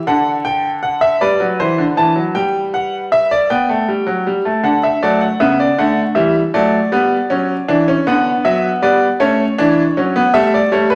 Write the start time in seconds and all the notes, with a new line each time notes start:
0.07 D3 A4 F#5
0.45 G5
0.83 F#5
1.01 E5
1.21 G3 B4 D5
1.40 F#3
1.60 E3 C5
1.78 D3
1.97 E3 A5
2.16 F#3
2.35 G3 G5
2.74 F#5
3.12 E5
3.31 D5
3.50 B3 G5
3.69 A3
3.88 G3
4.07 F#3
4.27 G3
4.45 A3
4.63 D3 A4 F#5
4.83 E5
5.02 F#3 A3 D5
5.21 F#5
5.40 C#3 B3 E5
5.60 D5
5.78 D3 A3 F#5
6.15 E3 G3 E5
6.54 F#3 A3 D5
6.92 G3 B3
7.30 F#3 C#4
7.68 E3 D4
7.88 C#4
8.07 D3 B3 F#5
8.45 F#3 E5
8.82 G3 B3 D5
9.20 A3 C#4 C#5
9.58 E3 D4
9.97 F#3 C#4
10.16 B3
10.34 G3 A3 E5
10.54 D5
10.72 G3 A3 C#5
10.90 B4